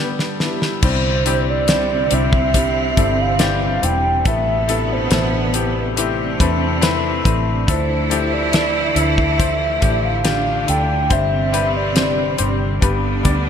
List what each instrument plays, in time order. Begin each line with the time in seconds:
Already playing: grand piano G2 G3 B3 D4 G4 A4, analog synth pad D3 G3 B3 G4, soft synth lead B4
0.19 snare
0.40 grand piano G3 B3 D4 E4, snare
0.62 snare
0.82 fingered electric bass C2, cello section C3 C4, grand piano C3 G3 C4 D4 E4 G4, analog synth pad D3 G3 C4 D4, soft synth lead C5, kick, crash
1.25 grand piano G3 C4 D4 E4 G4, closed hi-hat
1.50 soft synth lead D5
1.67 grand piano G3 C4 D4 E4 G4, snare, closed hi-hat
2.10 fingered electric bass C2, grand piano G3 C4 D4 E4 G4, soft synth lead E5, closed hi-hat
2.33 kick
2.54 grand piano G3 C4 D4 E4 G4, kick, closed hi-hat
2.96 fingered electric bass G1, grand piano G3 C4 D4 E4 A4, kick, closed hi-hat
3.22 soft synth lead F5
3.39 grand piano E3 G3 C4 D4 G4, snare, closed hi-hat
3.81 fingered electric bass E1, grand piano G3 C4 D4 E4 G4, soft synth lead G5, closed hi-hat
4.25 fingered electric bass A1, grand piano A2 C3 A3 B3 E4 A4, cello section B2 B3, analog synth pad E3 A3, soft synth lead E5, kick, closed hi-hat
4.68 grand piano C3 A3 B3 E4 A4, closed hi-hat
4.93 soft synth lead C5
5.11 fingered electric bass A1, grand piano C3 A3 E4 A4, snare, closed hi-hat
5.54 grand piano C3 A3 B3 E4 G4, closed hi-hat
5.97 cello section C3 C4, grand piano A3 C4 E4 G4 B4, closed hi-hat
6.40 fingered electric bass E2, grand piano A3 C4 E4 A4 B4, kick, closed hi-hat
6.81 grand piano A3 C4 E4 B4, snare, closed hi-hat
7.24 fingered electric bass A1, grand piano A3 C4 E4 B4, kick, closed hi-hat
7.67 fingered electric bass D2, grand piano D3 F3 A3 D4 E4 A4, analog synth pad D3, cello section E3 E4, soft synth lead C5, kick, closed hi-hat
8.10 grand piano F3 A3 D4 E4 G4, closed hi-hat
8.34 soft synth lead D5
8.52 grand piano F3 A3 D4 E4 A4, snare, closed hi-hat
8.95 fingered electric bass D2, grand piano F3 A3 D4 E4 A4, soft synth lead E5, closed hi-hat
9.18 kick
9.38 grand piano F3 A3 D4 E4 C5, kick, closed hi-hat
9.81 fingered electric bass A1, grand piano F3 A3 D4 E4 G4, kick, closed hi-hat
10.05 soft synth lead F5
10.24 cello section D3 D4, grand piano A3 D4 F4 G4, snare, closed hi-hat
10.66 fingered electric bass D2, grand piano A3 D4 E4 F4 A4, soft synth lead G5, closed hi-hat
11.10 fingered electric bass G1, grand piano G2 G3 C4 D4 G4 C5, cello section C3 C4, analog synth pad D3 G3 C4 G4, soft synth lead E5, kick, closed hi-hat
11.52 grand piano G3 C4 D4 G4 B4, closed hi-hat
11.77 soft synth lead D5
11.95 grand piano G3 C4 D4 G4 C5, snare, closed hi-hat
12.37 fingered electric bass G1, grand piano G3 C4 D4 G4 C5, closed hi-hat
12.81 fingered electric bass G1, grand piano G2 G3 B3 D4 G4 B4, cello section D3 D4, analog synth pad B3, kick, closed hi-hat
13.23 fingered electric bass D2, grand piano G3 B3 D4 G4 D5, kick, closed hi-hat